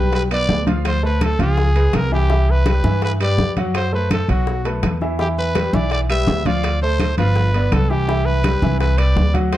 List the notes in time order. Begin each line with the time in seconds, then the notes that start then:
Already playing: B1 G3 G4 B4 G5
0.13 B4, high bongo, high conga, high timbale
0.31 B3 B4 D5, high conga, high timbale, claves
0.49 D2, high bongo, low bongo, high conga, low timbale
0.67 F3 F4 F5, high conga, high timbale
0.85 C5, high bongo, high conga, high timbale, claves
1.03 A3 A4 B4 C5, high conga
1.21 A4, high bongo, high conga, high timbale, claves
1.39 C#2 F3 F4 G#4 F5, high bongo, high conga, high timbale
1.58 high bongo, high conga
1.75 G#3 G#4 B4, high bongo, high conga, high timbale
1.93 C2 A#4, high bongo, low bongo, high conga, high timbale, low timbale, claves
2.12 E3 E4 G4 E5, high bongo, high conga
2.29 E3 E4 E5, high bongo, high conga
2.48 B4, high conga
2.66 G3 G4 B4, high bongo, high conga, high timbale, claves
2.84 G2 E3 E4 E5, high conga
3.02 B4, high bongo, high conga, high timbale
3.20 G3 G4 B4 D5, high conga, high timbale, claves
3.38 F#2, high bongo, low bongo, high conga
3.57 F#3 F#4 F#5, high conga, high timbale
3.74 C5, high bongo, high conga, high timbale, claves
3.92 A3 A4 B4 C5, high conga
4.11 A4, high bongo, high conga, high timbale, claves
4.28 B1 F#3 F#4 F#5, high bongo, high conga, high timbale
4.47 high bongo, high conga
4.65 A3 A4 B4, high bongo, high conga, high timbale
4.83 E2, high bongo, low bongo, high conga, high timbale, claves
5.01 E3 E4 E5, high bongo, high conga
5.19 E3 E4 G4 E5, high bongo, high conga
5.37 B4, high conga
5.55 G3 G4 B4, high bongo, high conga, high timbale, claves
5.73 B1 E3 E4 D5 E5, high conga
5.91 D5, high bongo, high conga, high timbale
6.09 G3 G4 B4 E5, high conga, high timbale, claves
6.27 D2, high bongo, low bongo, high conga, low timbale
6.45 F3 F4 D5 F5, high conga, high timbale
6.64 high bongo, high conga, high timbale, claves
6.82 A3 A4 C5, high conga
7.00 high bongo, high conga, high timbale, claves
7.18 G1 F3 F4 B4 F5, high bongo, high conga, high timbale
7.36 high bongo, high conga
7.54 B3 B4 D5, high bongo, high conga, high timbale
7.72 C2 A4, high bongo, low bongo, high conga, high timbale, claves
7.90 E3 E4 G4 E5, high bongo, high conga
8.08 E3 E4 E5, high bongo, high conga
8.26 B4, high conga
8.44 G3 G4 B4, high bongo, high conga, high timbale, claves
8.62 C2 E3 E4 E5, high conga
8.80 B4, high bongo, high conga, high timbale
8.98 G3 G4 B4 D5, high conga, high timbale, claves
9.16 D2, high bongo, low bongo, high conga, low timbale
9.34 F#3 F#4 F#5, high conga, high timbale
9.52 C5, high bongo, high conga, high timbale, claves